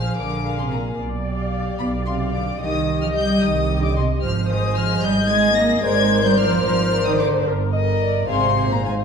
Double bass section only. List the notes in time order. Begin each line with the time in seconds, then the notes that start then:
0.18 A#1
0.99 B1
1.79 B1
2.60 C2
3.42 C2
4.23 G#1
5.03 G#1
5.83 G#1
6.64 G#1
7.46 G1
8.29 G#1